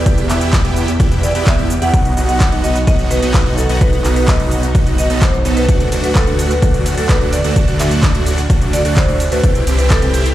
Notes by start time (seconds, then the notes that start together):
Already playing: B2 E3 G3 E4 G4 D5
0.06 E2 B3 E4 G4, kick, closed hi-hat, shaker
0.18 closed hi-hat, shaker
0.29 E2 B3 E4 G4 E5, clap, open hi-hat, shaker
0.41 closed hi-hat, shaker
0.53 kick, clap, closed hi-hat, shaker
0.65 E2 B3 E4 G4, closed hi-hat
0.76 open hi-hat, shaker
0.88 closed hi-hat, shaker
1.00 E2 B3 E4 G4, kick, closed hi-hat, shaker
1.12 closed hi-hat, shaker
1.23 D5, open hi-hat, shaker
1.35 E2 B3 E4 G4, closed hi-hat, shaker
1.47 E5, kick, clap, closed hi-hat, shaker
1.58 E2 B3 E4 G4, shaker
1.70 open hi-hat, shaker
1.82 E2 B3 E4 G4 F#5, closed hi-hat, shaker
1.94 B1 D#3 F#3 B3 D#4 F#4, kick, closed hi-hat, shaker
2.05 closed hi-hat, shaker
2.17 B1 B3 D#4 F#4, open hi-hat, shaker
2.29 F#5, closed hi-hat, shaker
2.40 kick, clap, closed hi-hat, shaker
2.52 B1 B3 D#4 F#4, closed hi-hat
2.64 D#5, open hi-hat, shaker
2.76 closed hi-hat, shaker
2.87 B1 B3 D#4 F#4 D#5, kick, closed hi-hat, shaker
2.99 closed hi-hat, shaker
3.11 B4, open hi-hat, shaker
3.22 B1 B3 D#4 F#4, closed hi-hat, shaker
3.34 kick, clap, closed hi-hat, shaker
3.46 B1 B3 D#4 F#4
3.58 A4, open hi-hat, shaker
3.69 B1 B3 D#4 F#4, closed hi-hat, shaker
3.81 B1 B3 D#4 F#4 B4, kick, closed hi-hat, shaker
3.93 closed hi-hat, shaker
4.04 B1 B3 D#4 F#4, clap, open hi-hat, shaker
4.16 B4, closed hi-hat, shaker
4.28 D#5, kick, clap, closed hi-hat, shaker
4.40 B1 B3 D#4 F#4, closed hi-hat
4.51 open hi-hat, shaker
4.63 closed hi-hat, shaker
4.75 B1 B3 D#4 F#4, kick, closed hi-hat, shaker
4.87 closed hi-hat, shaker
4.98 D#5, open hi-hat, shaker
5.10 B1 B3 D#4 A4, closed hi-hat, shaker
5.22 C5, kick, clap, closed hi-hat, shaker
5.34 shaker
5.45 B1 B3 D#4 A4, open hi-hat, shaker
5.57 B4, closed hi-hat, shaker
5.69 D2 A2 D3 A3 D4 F#4, kick, closed hi-hat, shaker
5.80 closed hi-hat, shaker
5.92 D2 A3 D4 F#4, open hi-hat, ride, shaker
6.04 B4, closed hi-hat, shaker
6.15 A4, kick, clap, closed hi-hat, shaker
6.27 D2 A3 D4 F#4, closed hi-hat
6.39 open hi-hat, ride, shaker
6.51 B4, closed hi-hat, shaker
6.62 D2 A3 D4 F#4, kick, closed hi-hat, shaker
6.74 closed hi-hat, shaker
6.86 open hi-hat, ride, shaker
6.97 D2 A3 D4 F#4 A4, closed hi-hat, shaker
7.09 B4, kick, clap, closed hi-hat, shaker
7.21 D2 A3 D4 F#4
7.33 D5, open hi-hat, ride, shaker
7.44 D2 A3 D4 F#4, closed hi-hat, shaker
7.56 D2 A3 D4 E4 F#4, kick, closed hi-hat, shaker
7.68 closed hi-hat, shaker
7.79 D2 A3 D4 F#4 E5, clap, open hi-hat, ride, shaker
7.91 closed hi-hat, shaker
8.03 kick, clap, closed hi-hat, shaker
8.15 D2 A3 D4 F#4, closed hi-hat
8.26 open hi-hat, ride, shaker
8.38 closed hi-hat, shaker
8.50 D2 A3 D4 F#4, kick, closed hi-hat, shaker
8.62 closed hi-hat, shaker
8.73 D5, open hi-hat, ride, shaker
8.85 D2 A3 D4 F#4, closed hi-hat, shaker
8.97 C5, kick, clap, closed hi-hat, shaker
9.08 D2 A3 D4 F#4, shaker
9.20 open hi-hat, ride, shaker
9.32 D2 A3 D4 F#4 B4, closed hi-hat, shaker
9.44 C2 C3 E3 G3 C4 E4 G4, kick, closed hi-hat, shaker
9.55 closed hi-hat, shaker
9.67 C2 C4 E4 G4, open hi-hat, ride, shaker
9.79 B4, closed hi-hat, shaker
9.90 A4, kick, clap, closed hi-hat, shaker
10.02 C2 C4 E4 G4, closed hi-hat
10.14 G4, open hi-hat, ride, shaker
10.26 closed hi-hat, shaker